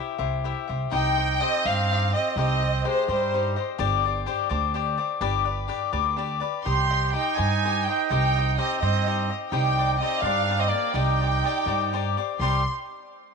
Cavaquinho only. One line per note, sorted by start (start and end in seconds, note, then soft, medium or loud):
0.00 0.18 E4 medium
0.00 0.18 G4 medium
0.00 0.18 C5 medium
0.00 0.17 E5 medium
0.18 0.43 E4 soft
0.18 0.44 G4 medium
0.18 0.44 C5 medium
0.18 0.45 E5 medium
0.44 0.68 E4 medium
0.44 0.68 G4 medium
0.44 0.68 C5 medium
0.44 0.66 E5 medium
0.68 0.91 G4 soft
0.68 0.91 C5 soft
0.68 0.92 E5 medium
0.91 1.18 D#4 medium
0.91 1.18 G4 medium
0.91 1.16 C5 medium
0.91 1.16 D#5 medium
1.17 1.40 G4 soft
1.17 1.41 C5 soft
1.17 1.41 D#5 soft
1.41 1.65 D#4 medium
1.41 1.65 G4 medium
1.41 1.65 C5 medium
1.41 1.65 D#5 medium
1.66 1.90 D#4 medium
1.66 1.91 G4 soft
1.66 1.91 C5 medium
1.66 1.91 D#5 medium
1.91 2.14 D#4 medium
1.91 2.15 G4 medium
1.91 2.14 C5 medium
1.91 2.13 D#5 medium
2.14 2.37 G4 soft
2.14 2.38 C5 soft
2.14 2.37 D#5 soft
2.38 2.62 D#4 medium
2.38 2.63 G4 medium
2.38 2.62 C5 medium
2.38 2.61 D#5 medium
2.62 2.84 G4 soft
2.62 2.84 C5 soft
2.62 2.85 D#5 medium
2.84 3.08 D#4 medium
2.84 3.08 G4 medium
2.84 3.08 C5 medium
2.84 3.07 D#5 medium
3.08 3.33 D#4 soft
3.08 3.33 G4 medium
3.08 3.33 C5 medium
3.08 3.33 D#5 medium
3.34 3.57 D#4 medium
3.34 3.57 G4 medium
3.34 3.56 C5 medium
3.34 3.55 D#5 medium
3.56 3.78 G4 soft
3.56 3.78 C5 soft
3.56 3.79 D#5 medium
3.78 4.04 D4 medium
3.78 4.04 G4 medium
3.78 4.04 C5 medium
3.78 4.04 D5 loud
4.05 4.26 G4 soft
4.05 4.26 C5 medium
4.05 4.27 D5 medium
4.26 4.50 D4 medium
4.26 4.49 G4 medium
4.26 4.49 C5 medium
4.26 4.48 D5 medium
4.49 4.73 D4 medium
4.49 4.74 G4 medium
4.49 4.74 C5 medium
4.49 4.75 D5 medium
4.74 4.98 D4 medium
4.74 4.98 G4 medium
4.74 4.97 C5 medium
4.74 4.96 D5 medium
4.97 5.20 G4 soft
4.97 5.21 C5 soft
4.97 5.20 D5 medium
5.21 5.46 D4 medium
5.21 5.45 G4 medium
5.21 5.44 B4 medium
5.21 5.44 D5 medium
5.45 5.67 G4 soft
5.45 5.68 B4 medium
5.45 5.68 D5 medium
5.68 5.92 D4 medium
5.68 5.92 G4 medium
5.68 5.92 B4 medium
5.68 5.91 D5 medium
5.93 6.15 D4 medium
5.93 6.16 G4 medium
5.93 6.17 B4 medium
5.93 6.17 D5 medium
6.17 6.42 D4 medium
6.17 6.41 G4 medium
6.17 6.40 B4 medium
6.17 6.39 D5 medium
6.40 6.64 G4 soft
6.40 6.65 B4 medium
6.40 6.65 D5 medium
6.65 6.91 D#4 medium
6.65 6.90 G4 medium
6.65 6.90 C5 medium
6.65 6.89 D#5 medium
6.90 7.12 G4 soft
6.90 7.13 C5 soft
6.90 7.14 D#5 medium
7.13 7.37 D#4 medium
7.13 7.37 G4 medium
7.13 7.36 C5 medium
7.13 7.36 D#5 medium
7.37 7.63 D#4 soft
7.37 7.63 G4 medium
7.37 7.63 C5 medium
7.37 7.63 D#5 medium
7.64 7.88 D#4 soft
7.64 7.88 G4 medium
7.64 7.87 C5 medium
7.64 7.86 D#5 medium
7.88 8.10 G4 soft
7.88 8.10 C5 soft
7.88 8.11 D#5 soft
8.10 8.36 D#4 medium
8.10 8.36 G4 medium
8.10 8.36 C5 medium
8.10 8.36 D#5 medium
8.37 8.57 G4 soft
8.37 8.58 C5 soft
8.37 8.58 D#5 soft
8.58 8.81 D#4 medium
8.58 8.82 G4 medium
8.58 8.81 C5 medium
8.58 8.81 D#5 medium
8.82 9.05 D#4 medium
8.82 9.05 G4 medium
8.82 9.06 C5 medium
8.82 9.07 D#5 medium
9.06 9.30 D#4 medium
9.06 9.29 G4 medium
9.06 9.29 C5 medium
9.06 9.28 D#5 medium
9.30 9.51 G4 soft
9.30 9.52 C5 soft
9.30 9.53 D#5 soft
9.52 9.77 D#4 medium
9.52 9.77 G4 medium
9.52 9.77 C5 medium
9.52 9.78 D5 medium
9.78 10.01 G4 soft
9.78 10.01 C5 medium
9.78 10.01 D5 medium
10.01 10.24 D#4 medium
10.01 10.24 G4 medium
10.01 10.24 C5 medium
10.01 10.23 D5 medium
10.24 10.48 D#4 medium
10.24 10.48 G4 medium
10.24 10.49 C5 medium
10.24 10.49 D5 medium
10.49 10.72 D#4 medium
10.49 10.72 G4 medium
10.49 10.72 C5 medium
10.49 10.72 D5 medium
10.73 10.94 G4 soft
10.73 10.94 C5 soft
10.73 10.94 D5 medium
10.94 11.20 D#4 medium
10.94 11.20 G4 medium
10.94 11.20 C5 medium
10.94 11.19 D5 medium
11.20 11.43 G4 soft
11.20 11.43 C5 soft
11.20 11.44 D5 soft
11.44 11.67 D#4 medium
11.44 11.67 G4 medium
11.44 11.67 C5 medium
11.44 11.66 D5 medium
11.67 11.92 D#4 medium
11.67 11.92 G4 medium
11.67 11.93 C5 medium
11.67 11.93 D5 medium
11.93 12.17 D#4 medium
11.93 12.17 G4 medium
11.93 12.17 C5 medium
11.93 12.16 D5 medium
12.17 12.40 G4 soft
12.17 12.41 C5 soft
12.17 12.41 D5 medium
12.41 12.61 D#4 medium
12.41 12.61 G4 medium
12.41 12.62 C5 medium
12.41 12.62 D5 medium